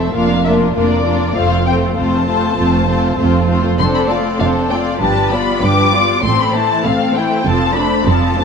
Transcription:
Already playing: A3 C4 A4 C5 E5
0.14 F1 F2 A#3 D4 F4 A#4 F5
0.45 A#3 D4 F4 A#4 E5
0.75 F1 F2 A#3 D4 F4 A#4 D5
1.06 A#3 D4 F4 A#4
1.35 F1 F2 A3 C4 F4 C5 F5
1.66 A3 C4 F4 C5 G5
1.97 F1 F2 A3 C4 F4 C5 A5
2.28 A3 C4 F4 C5
2.58 F1 F2 A3 C4 F4 C5
2.88 A3 C4 F4 C5
3.18 F1 F2 A3 C4 F4 C5
3.49 A3 C4 F4 C5
3.79 F1 F2 C4 D4 A4 C5 C6
3.95 B5
4.09 A3 C4 F4 D5 A5
4.39 F1 F2 C4 D4 A4 C5 F5
4.70 A3 C4 F4 D5 G5
5.00 G1 G2 F3 D4 G4 B4 A5
5.32 G3 B3 F4 D5 B5
5.62 G1 G2 F3 D4 G4 B4 D6
5.93 G3 B3 F4 D5
6.23 A1 A2 A3 C4 A4 C6
6.40 B5
6.54 E3 A3 E4 C5 A5
6.84 A1 A2 A3 C4 A4 F5
7.15 E3 A3 E4 C5 G5
7.45 F1 F2 F3 C4 F4 A4 A5
7.75 A3 D4 C5 B5
8.06 F1 F2 F3 C4 F4 A4 A5
8.37 A3 D4 C5

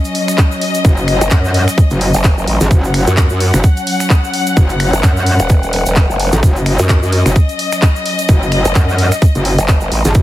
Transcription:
Already playing: F#3 C#4 D#5
0.05 closed hi-hat, shaker
0.15 open hi-hat
0.28 finger snap, closed hi-hat, shaker
0.38 kick, clap, closed hi-hat, shaker
0.52 shaker
0.61 open hi-hat
0.74 closed hi-hat, shaker
0.85 F#1, kick, closed hi-hat, shaker
0.97 shaker
1.08 finger snap, open hi-hat
1.21 F#1, closed hi-hat, shaker
1.31 F#2, kick, clap, closed hi-hat, shaker
1.45 shaker
1.54 open hi-hat
1.68 finger snap, closed hi-hat, shaker
1.78 kick, closed hi-hat, shaker
1.90 F#1, closed hi-hat, shaker
2.01 open hi-hat
2.14 F#1, closed hi-hat, shaker
2.24 kick, clap, open hi-hat, shaker
2.38 F#1, shaker
2.48 A1, open hi-hat
2.61 G#1, closed hi-hat, shaker
2.71 F#1 F#5, kick, closed hi-hat, shaker
2.84 shaker
2.94 finger snap, open hi-hat
3.07 F#2, closed hi-hat, shaker
3.17 kick, clap, closed hi-hat, shaker
3.29 F#2, shaker
3.40 open hi-hat
3.54 F#1, finger snap, closed hi-hat, shaker
3.64 kick, closed hi-hat, shaker
3.77 closed hi-hat, shaker
3.87 open hi-hat
4.00 finger snap, closed hi-hat, shaker
4.10 kick, clap, closed hi-hat, shaker
4.24 shaker
4.34 open hi-hat
4.47 closed hi-hat, shaker
4.57 F#1, kick, closed hi-hat, shaker
4.69 closed hi-hat, shaker
4.80 finger snap, open hi-hat
4.93 F#1, closed hi-hat, shaker
5.03 F#2, kick, clap, closed hi-hat, shaker
5.17 shaker
5.26 open hi-hat
5.39 E1, finger snap, closed hi-hat, shaker
5.49 kick, closed hi-hat, shaker
5.63 closed hi-hat, shaker
5.73 open hi-hat
5.86 E1, closed hi-hat, shaker
5.96 kick, clap, open hi-hat, shaker
6.10 F#1, shaker
6.20 open hi-hat
6.32 A1, closed hi-hat, shaker
6.43 F#1 D#5, kick, closed hi-hat, shaker
6.56 shaker
6.66 finger snap, open hi-hat
6.79 F#2, closed hi-hat, shaker
6.89 kick, clap, closed hi-hat, shaker
7.03 F#2, shaker
7.12 open hi-hat
7.26 F#1, finger snap, closed hi-hat, shaker
7.36 kick, closed hi-hat, shaker
7.49 closed hi-hat, shaker
7.59 open hi-hat
7.72 finger snap, closed hi-hat, shaker
7.82 kick, clap, closed hi-hat, shaker
7.96 shaker
8.06 open hi-hat
8.19 closed hi-hat, shaker
8.29 F#1, kick, closed hi-hat, shaker
8.42 shaker
8.52 finger snap, open hi-hat
8.65 F#1, closed hi-hat, shaker
8.75 F#2, kick, clap, closed hi-hat, shaker
8.89 shaker
8.98 open hi-hat
9.12 finger snap, closed hi-hat, shaker
9.22 kick, closed hi-hat, shaker
9.35 F#1, closed hi-hat, shaker
9.45 open hi-hat
9.58 F#1, closed hi-hat, shaker
9.68 kick, clap, open hi-hat, shaker
9.81 F#1, shaker
9.92 A1, open hi-hat
10.05 G#1, closed hi-hat, shaker
10.14 F#1 F#4, kick, closed hi-hat, shaker

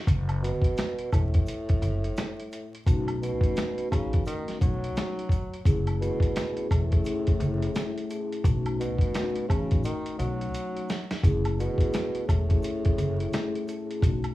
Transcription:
0.07 F#1, kick, closed hi-hat, shaker
0.29 closed hi-hat, high woodblock
0.43 B2, closed hi-hat, shaker
0.62 kick, closed hi-hat
0.77 snare, closed hi-hat, shaker
0.99 closed hi-hat
1.12 E1 A2, kick, closed hi-hat, high woodblock, shaker
1.34 kick, closed hi-hat
1.46 closed hi-hat, shaker
1.69 kick, closed hi-hat
1.82 F#1, closed hi-hat, shaker
2.04 closed hi-hat
2.17 snare, closed hi-hat, shaker
2.40 closed hi-hat
2.52 closed hi-hat, shaker
2.74 closed hi-hat
2.86 B1 A3 C#4 D#4 F#4, kick, closed hi-hat, shaker
3.08 closed hi-hat, high woodblock
3.22 B2, closed hi-hat, shaker
3.41 kick, closed hi-hat
3.56 snare, closed hi-hat, shaker
3.78 closed hi-hat
3.90 A1 C#3, kick, closed hi-hat, high woodblock, shaker
4.13 kick, closed hi-hat
4.25 D#3, closed hi-hat, shaker
4.48 snare, closed hi-hat
4.61 B1 F#3, kick, closed hi-hat, shaker
4.84 closed hi-hat
4.96 snare, closed hi-hat, shaker
5.19 closed hi-hat
5.29 kick, closed hi-hat, shaker
5.54 closed hi-hat
5.65 F#1 A3 C#4 E4 G#4, kick, closed hi-hat, shaker
5.87 closed hi-hat, high woodblock
6.01 B2, closed hi-hat, shaker
6.20 kick, closed hi-hat
6.36 snare, closed hi-hat, shaker
6.57 closed hi-hat
6.70 E1 A2, kick, closed hi-hat, high woodblock, shaker
6.91 A3 C#4 E4 G#4, kick, closed hi-hat
7.04 A3 C#4 E4 G#4, closed hi-hat, shaker
7.27 kick, closed hi-hat
7.40 F#1, closed hi-hat, shaker
7.62 closed hi-hat
7.75 snare, closed hi-hat, shaker
7.98 closed hi-hat
8.09 A3 C#4 E4 G#4, closed hi-hat, shaker
8.33 closed hi-hat
8.43 B1 A3 C#4 D#4 F#4, kick, closed hi-hat, shaker
8.66 closed hi-hat, high woodblock
8.80 B2, closed hi-hat, shaker
8.99 kick, closed hi-hat
9.14 snare, closed hi-hat, shaker
9.36 closed hi-hat
9.48 A1 C#3, kick, closed hi-hat, high woodblock, shaker
9.71 kick, closed hi-hat
9.83 D#3, closed hi-hat, shaker
10.06 closed hi-hat
10.18 B1 F#3, closed hi-hat, shaker
10.41 closed hi-hat
10.54 closed hi-hat, shaker
10.76 closed hi-hat
10.89 snare, closed hi-hat, shaker
11.11 snare, closed hi-hat
11.22 F#1 A3 C#4 E4 G#4, kick, closed hi-hat, shaker
11.45 closed hi-hat, high woodblock
11.59 B2, closed hi-hat, shaker
11.78 kick, closed hi-hat
11.93 snare, closed hi-hat, shaker
12.15 closed hi-hat
12.28 E1 A2, kick, closed hi-hat, high woodblock, shaker
12.49 A3 C#4 E4 G#4, kick, closed hi-hat
12.62 A3 C#4 E4 G#4, closed hi-hat, shaker
12.85 kick, closed hi-hat
12.98 F#1, closed hi-hat, shaker
13.20 closed hi-hat
13.33 snare, closed hi-hat, shaker
13.56 closed hi-hat
13.67 A3 C#4 E4 G#4, closed hi-hat, shaker
13.91 closed hi-hat
14.01 B1 A3 C#4 D#4 F#4, kick, closed hi-hat, shaker
14.24 closed hi-hat, high woodblock

